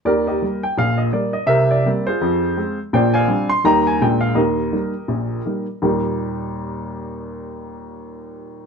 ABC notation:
X:1
M:4/4
L:1/8
Q:"Swing" 1/4=166
K:Eb
V:1 name="Upright piano"
[GBd] [GBe]2 g f e d e | [Bc_f] d2 [=FAc]4 z | [cdg] [dfa]2 c' [egb] a g f | [GBe]6- [GBe] z |
[E,,B,,G,B,EG]8- | [E,,B,,G,B,EG]8 |]
V:2 name="Upright piano" clef=bass
[E,,E,]2 [G,B,]2 [B,,,B,,]2 [G,B,]2 | [C,,C,]2 [G,B,C]2 [F,,F,]2 [A,C]2 | [B,,,B,,]2 [G,CD]2 [E,,E,G,B,E]2 [B,,,B,,A,B,D]2 | [E,,E,]2 [G,B,E]2 [B,,,B,,]2 [G,B,E]2 |
z8 | z8 |]